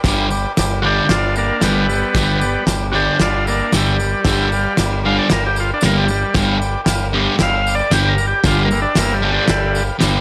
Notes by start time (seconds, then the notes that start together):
0.04 G1 G2 D3 G3 G4 B4 D5, kick, snare, tambourine, crash
0.30 G4 B4 D5, tambourine
0.57 G1 G4 B4 D5, snare, tambourine, crash
0.82 G2 D3 G3 D4 F#4 G4 B4 F5
1.08 G1 D4 F4 G4 B4 D5, snare, tambourine, crash
1.33 A#3 G4 B4 F5, tambourine
1.38 D4
1.60 G1 G2 D3 G3 B3 G4 B4 F5, snare, tambourine, crash
1.85 G4 B4 E5
1.89 tambourine
2.13 G1 G2 G4 B4 D5, kick, snare, tambourine, crash
2.17 D3 G3
2.39 G4 B4 D5, tambourine
2.63 G1 G4 B4 D5, snare, crash
2.68 tambourine
2.91 G2 D3 D4 F#4 G4 B4 D5, tambourine
2.95 G3 G4
3.19 G1 D4 F4 G4 B4 D5, snare, tambourine, crash
3.44 A#3 G4 B4 E5, tambourine
3.49 D4
3.72 G1 G2 D3 G3 G4 B4 E5, snare, tambourine, crash
4.00 G4 B4 D5, tambourine
4.24 G1 G2 D3 G3 G4 B4 E5, kick, snare, tambourine, crash
4.52 G4 B4 F5, tambourine
4.77 G1 G4 B4 D5, snare, tambourine, crash
5.03 G2 D3 G3 G4 B4 D5 F5
5.19 D5
5.30 G1 G4 A#4 B4 D5, snare, tambourine, crash
5.47 G4
5.56 G4 B4 F5, tambourine
5.60 F4
5.74 D4
5.81 G1 G2 D3 G3 G4 B4 F5, snare, tambourine, crash
5.85 A#3
5.98 G3
6.08 G3 G4 B4 D5, tambourine
6.34 G1 G2 D3 G3 G4 B4 F5, kick, snare, tambourine, crash
6.58 G4 B4 D5, tambourine
6.84 G1 G4 B4 F5, snare, tambourine, crash
7.13 G2 D3 G3 G4 B4 D5
7.39 G1 G4 B4 E5 F5, snare, tambourine, crash
7.67 G4 B4 D5, tambourine
7.75 D5
7.91 G1 G2 D3 G3 G4 B4 D5, snare, tambourine, crash
8.09 A#4
8.18 G4 B4 D5, tambourine
8.27 G4
8.44 G1 G2 D3 G3 F4 G4 B4, kick, snare, tambourine, crash
8.48 D5
8.65 A#3
8.71 G4 B4 E5, tambourine
8.82 D4
8.95 G1 A#3 G4 B4 E5, snare, tambourine, crash
9.14 G3
9.22 G2 D3 G3 G4 B4 D5
9.32 D3 G3
9.48 G1 G4 B4 E5, snare, tambourine, crash
9.75 G4 B4 F5, tambourine
9.99 G1 G2 D3 G3 G4 B4 D5, snare, tambourine, crash